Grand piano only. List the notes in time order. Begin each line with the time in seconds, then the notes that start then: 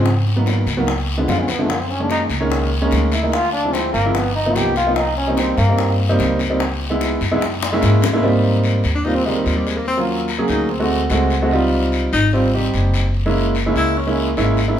0.36 D#3 F#3 A#3 B3
0.77 D#3 F#3 A#3 B3
1.18 D3 F3 G#3 B3
1.59 D3 F3 G#3 B3
2.00 D#3 G#3 A#3 C#4
2.40 D#3 G#3 A#3 C#4
2.82 D#3 G#3 A#3 C#4
3.23 D#3 G#3 A#3 D#4
3.64 F3 G#3 C4 E4
4.05 F3 G#3 C4 E4
4.45 F3 A#3 B3 D#4
4.86 F3 A#3 B3 D#4
5.27 G3 A#3 C4 D#4
5.68 G3 A#3 C4 D#4
6.09 G3 A#3 C4 D#4
6.50 G3 A#3 C4 D#4
6.90 G#3 B3 D#4 E4
7.31 G#3 B3 D#4 E4
7.72 G#3 A#3 C#4 E4
8.13 G#3 A#3 C#4 E4
8.23 G3 A#3 C4 D#4
9.05 G3 A#3 C4 F4
9.26 G3 A#3 C4 D#4
9.97 F#3 A#3 C#4 F4
10.38 F#3 A#3 C#4 G#4
10.80 G#3 A3 C4 F#4
11.11 G#3 A3 C4 F#4
11.42 G#3 A3 C4 F#4
11.52 G3 C4 D#4 F4
12.33 G3 C4 D#4 F4
12.54 G3 C4 D#4 G4
13.26 G#3 A#3 C#4 E4
13.66 G#3 A#3 C#4 E4
14.07 G#3 A#3 C#4 E4
14.37 G#3 A#3 C#4 E4
14.68 G#3 A#3 C#4 E4